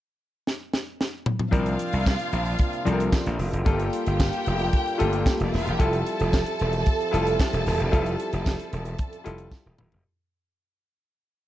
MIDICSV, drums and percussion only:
0, 0, Header, 1, 2, 480
1, 0, Start_track
1, 0, Tempo, 532387
1, 1379, Time_signature, 4, 2, 24, 8
1, 10345, End_track
2, 0, Start_track
2, 0, Title_t, "Drums"
2, 427, Note_on_c, 9, 38, 68
2, 517, Note_off_c, 9, 38, 0
2, 662, Note_on_c, 9, 38, 86
2, 753, Note_off_c, 9, 38, 0
2, 907, Note_on_c, 9, 38, 86
2, 998, Note_off_c, 9, 38, 0
2, 1137, Note_on_c, 9, 45, 93
2, 1227, Note_off_c, 9, 45, 0
2, 1257, Note_on_c, 9, 45, 86
2, 1348, Note_off_c, 9, 45, 0
2, 1376, Note_on_c, 9, 36, 107
2, 1377, Note_on_c, 9, 42, 64
2, 1467, Note_off_c, 9, 36, 0
2, 1467, Note_off_c, 9, 42, 0
2, 1497, Note_on_c, 9, 42, 44
2, 1587, Note_off_c, 9, 42, 0
2, 1617, Note_on_c, 9, 42, 62
2, 1707, Note_off_c, 9, 42, 0
2, 1738, Note_on_c, 9, 42, 43
2, 1828, Note_off_c, 9, 42, 0
2, 1861, Note_on_c, 9, 36, 116
2, 1862, Note_on_c, 9, 54, 101
2, 1870, Note_on_c, 9, 38, 102
2, 1877, Note_on_c, 9, 39, 81
2, 1952, Note_off_c, 9, 36, 0
2, 1952, Note_off_c, 9, 54, 0
2, 1960, Note_off_c, 9, 38, 0
2, 1967, Note_off_c, 9, 39, 0
2, 1978, Note_on_c, 9, 42, 48
2, 2068, Note_off_c, 9, 42, 0
2, 2099, Note_on_c, 9, 42, 46
2, 2189, Note_off_c, 9, 42, 0
2, 2215, Note_on_c, 9, 42, 41
2, 2305, Note_off_c, 9, 42, 0
2, 2332, Note_on_c, 9, 42, 68
2, 2340, Note_on_c, 9, 36, 96
2, 2422, Note_off_c, 9, 42, 0
2, 2430, Note_off_c, 9, 36, 0
2, 2461, Note_on_c, 9, 42, 35
2, 2552, Note_off_c, 9, 42, 0
2, 2582, Note_on_c, 9, 42, 60
2, 2673, Note_off_c, 9, 42, 0
2, 2706, Note_on_c, 9, 42, 52
2, 2796, Note_off_c, 9, 42, 0
2, 2817, Note_on_c, 9, 36, 121
2, 2822, Note_on_c, 9, 38, 126
2, 2824, Note_on_c, 9, 54, 78
2, 2829, Note_on_c, 9, 39, 93
2, 2908, Note_off_c, 9, 36, 0
2, 2912, Note_off_c, 9, 38, 0
2, 2914, Note_off_c, 9, 54, 0
2, 2919, Note_off_c, 9, 39, 0
2, 2942, Note_on_c, 9, 42, 51
2, 3032, Note_off_c, 9, 42, 0
2, 3059, Note_on_c, 9, 46, 56
2, 3149, Note_off_c, 9, 46, 0
2, 3187, Note_on_c, 9, 42, 42
2, 3277, Note_off_c, 9, 42, 0
2, 3300, Note_on_c, 9, 42, 66
2, 3301, Note_on_c, 9, 36, 110
2, 3391, Note_off_c, 9, 36, 0
2, 3391, Note_off_c, 9, 42, 0
2, 3422, Note_on_c, 9, 42, 42
2, 3513, Note_off_c, 9, 42, 0
2, 3543, Note_on_c, 9, 42, 67
2, 3633, Note_off_c, 9, 42, 0
2, 3664, Note_on_c, 9, 42, 50
2, 3754, Note_off_c, 9, 42, 0
2, 3784, Note_on_c, 9, 36, 102
2, 3788, Note_on_c, 9, 54, 94
2, 3789, Note_on_c, 9, 38, 107
2, 3796, Note_on_c, 9, 39, 86
2, 3874, Note_off_c, 9, 36, 0
2, 3878, Note_off_c, 9, 54, 0
2, 3879, Note_off_c, 9, 38, 0
2, 3886, Note_off_c, 9, 39, 0
2, 3903, Note_on_c, 9, 42, 47
2, 3994, Note_off_c, 9, 42, 0
2, 4024, Note_on_c, 9, 42, 47
2, 4114, Note_off_c, 9, 42, 0
2, 4142, Note_on_c, 9, 42, 37
2, 4232, Note_off_c, 9, 42, 0
2, 4264, Note_on_c, 9, 42, 64
2, 4266, Note_on_c, 9, 36, 86
2, 4354, Note_off_c, 9, 42, 0
2, 4356, Note_off_c, 9, 36, 0
2, 4394, Note_on_c, 9, 42, 36
2, 4484, Note_off_c, 9, 42, 0
2, 4507, Note_on_c, 9, 42, 71
2, 4597, Note_off_c, 9, 42, 0
2, 4623, Note_on_c, 9, 42, 49
2, 4714, Note_off_c, 9, 42, 0
2, 4742, Note_on_c, 9, 36, 118
2, 4747, Note_on_c, 9, 54, 92
2, 4748, Note_on_c, 9, 38, 111
2, 4755, Note_on_c, 9, 39, 95
2, 4832, Note_off_c, 9, 36, 0
2, 4837, Note_off_c, 9, 54, 0
2, 4838, Note_off_c, 9, 38, 0
2, 4845, Note_off_c, 9, 39, 0
2, 4868, Note_on_c, 9, 42, 49
2, 4958, Note_off_c, 9, 42, 0
2, 4991, Note_on_c, 9, 46, 62
2, 5000, Note_on_c, 9, 38, 41
2, 5081, Note_off_c, 9, 46, 0
2, 5090, Note_off_c, 9, 38, 0
2, 5116, Note_on_c, 9, 42, 48
2, 5206, Note_off_c, 9, 42, 0
2, 5226, Note_on_c, 9, 36, 108
2, 5227, Note_on_c, 9, 42, 72
2, 5316, Note_off_c, 9, 36, 0
2, 5317, Note_off_c, 9, 42, 0
2, 5347, Note_on_c, 9, 42, 43
2, 5437, Note_off_c, 9, 42, 0
2, 5467, Note_on_c, 9, 42, 62
2, 5557, Note_off_c, 9, 42, 0
2, 5587, Note_on_c, 9, 42, 44
2, 5677, Note_off_c, 9, 42, 0
2, 5709, Note_on_c, 9, 36, 102
2, 5714, Note_on_c, 9, 54, 95
2, 5716, Note_on_c, 9, 38, 107
2, 5723, Note_on_c, 9, 39, 89
2, 5799, Note_off_c, 9, 36, 0
2, 5804, Note_off_c, 9, 54, 0
2, 5806, Note_off_c, 9, 38, 0
2, 5813, Note_off_c, 9, 39, 0
2, 5827, Note_on_c, 9, 42, 53
2, 5917, Note_off_c, 9, 42, 0
2, 5947, Note_on_c, 9, 42, 49
2, 6037, Note_off_c, 9, 42, 0
2, 6067, Note_on_c, 9, 42, 42
2, 6157, Note_off_c, 9, 42, 0
2, 6185, Note_on_c, 9, 42, 69
2, 6191, Note_on_c, 9, 36, 93
2, 6275, Note_off_c, 9, 42, 0
2, 6282, Note_off_c, 9, 36, 0
2, 6317, Note_on_c, 9, 42, 38
2, 6407, Note_off_c, 9, 42, 0
2, 6437, Note_on_c, 9, 42, 67
2, 6527, Note_off_c, 9, 42, 0
2, 6553, Note_on_c, 9, 42, 53
2, 6643, Note_off_c, 9, 42, 0
2, 6667, Note_on_c, 9, 54, 86
2, 6668, Note_on_c, 9, 36, 119
2, 6677, Note_on_c, 9, 38, 127
2, 6684, Note_on_c, 9, 39, 102
2, 6757, Note_off_c, 9, 54, 0
2, 6758, Note_off_c, 9, 36, 0
2, 6767, Note_off_c, 9, 38, 0
2, 6775, Note_off_c, 9, 39, 0
2, 6792, Note_on_c, 9, 42, 52
2, 6882, Note_off_c, 9, 42, 0
2, 6910, Note_on_c, 9, 46, 63
2, 6920, Note_on_c, 9, 38, 35
2, 7000, Note_off_c, 9, 46, 0
2, 7010, Note_off_c, 9, 38, 0
2, 7036, Note_on_c, 9, 42, 45
2, 7126, Note_off_c, 9, 42, 0
2, 7151, Note_on_c, 9, 36, 108
2, 7156, Note_on_c, 9, 42, 72
2, 7241, Note_off_c, 9, 36, 0
2, 7246, Note_off_c, 9, 42, 0
2, 7270, Note_on_c, 9, 42, 45
2, 7360, Note_off_c, 9, 42, 0
2, 7390, Note_on_c, 9, 42, 64
2, 7480, Note_off_c, 9, 42, 0
2, 7508, Note_on_c, 9, 42, 48
2, 7598, Note_off_c, 9, 42, 0
2, 7627, Note_on_c, 9, 54, 96
2, 7631, Note_on_c, 9, 36, 109
2, 7640, Note_on_c, 9, 38, 102
2, 7647, Note_on_c, 9, 39, 79
2, 7717, Note_off_c, 9, 54, 0
2, 7721, Note_off_c, 9, 36, 0
2, 7730, Note_off_c, 9, 38, 0
2, 7738, Note_off_c, 9, 39, 0
2, 7749, Note_on_c, 9, 42, 51
2, 7840, Note_off_c, 9, 42, 0
2, 7870, Note_on_c, 9, 42, 51
2, 7960, Note_off_c, 9, 42, 0
2, 7983, Note_on_c, 9, 42, 43
2, 8073, Note_off_c, 9, 42, 0
2, 8101, Note_on_c, 9, 42, 73
2, 8107, Note_on_c, 9, 36, 96
2, 8191, Note_off_c, 9, 42, 0
2, 8197, Note_off_c, 9, 36, 0
2, 8229, Note_on_c, 9, 42, 42
2, 8319, Note_off_c, 9, 42, 0
2, 8346, Note_on_c, 9, 42, 69
2, 8436, Note_off_c, 9, 42, 0
2, 8459, Note_on_c, 9, 42, 53
2, 8549, Note_off_c, 9, 42, 0
2, 8579, Note_on_c, 9, 36, 107
2, 8583, Note_on_c, 9, 54, 84
2, 8587, Note_on_c, 9, 38, 58
2, 8669, Note_off_c, 9, 36, 0
2, 8673, Note_off_c, 9, 54, 0
2, 8677, Note_off_c, 9, 38, 0
2, 8822, Note_on_c, 9, 45, 95
2, 8912, Note_off_c, 9, 45, 0
2, 8944, Note_on_c, 9, 43, 78
2, 9034, Note_off_c, 9, 43, 0
2, 10345, End_track
0, 0, End_of_file